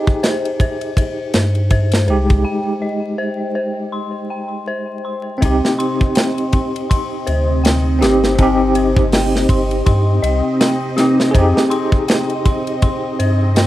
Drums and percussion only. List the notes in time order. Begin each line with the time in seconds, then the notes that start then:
0.07 kick
0.24 snare, ride
0.45 ride
0.60 kick, ride
0.81 ride
0.97 kick, ride
1.34 snare, ride
1.55 ride
1.70 kick, ride
1.92 snare, ride
2.08 ride
2.30 kick, ride
5.42 kick, ride
5.65 snare
5.80 ride
6.01 kick
6.15 snare, ride
6.38 ride
6.53 kick, ride
6.76 ride
6.91 kick, ride
7.27 ride
7.65 snare, ride
8.02 snare, ride
8.24 snare
8.38 kick, ride
8.75 ride
8.97 kick
9.12 snare, open hi-hat
9.36 snare
9.49 kick, ride
9.71 ride
9.86 kick, ride
10.24 ride
10.61 snare, ride
10.98 snare, ride
11.20 snare
11.35 kick, ride
11.57 snare
11.71 ride
11.92 kick
12.08 snare, ride
12.30 ride
12.45 kick, ride
12.67 ride
12.82 kick, ride
13.20 ride
13.56 snare, ride